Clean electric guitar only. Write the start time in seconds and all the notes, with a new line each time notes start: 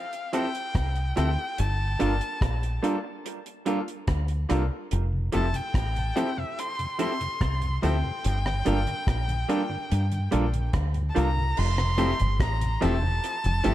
0.33 F3 C4 E4 A4
1.16 F3 C4 E4 A4
1.99 G3 D4 F4 A#4
2.83 G3 D4 F4 A#4
3.04 muted clean electric guitar stroke
3.66 G3 D4 F4 A#4
4.49 G3 D4 F4 A#4
5.32 F3 C4 E4 A4
6.16 F3 C4 E4 A4
6.37 muted clean electric guitar stroke
6.99 F3 C4 E4 A4
7.82 F3 C4 E4 A4
8.65 G3 D4 F4 A#4
9.49 G3 D4 F4 A#4
9.70 muted clean electric guitar stroke
10.31 G3 D4 F4 A#4
11.15 G3 D4 F4 A#4
11.98 F3 C4 E4 A4
12.81 F3 C4 E4 A4
13.02 muted clean electric guitar stroke
13.64 F3 C4 E4 A4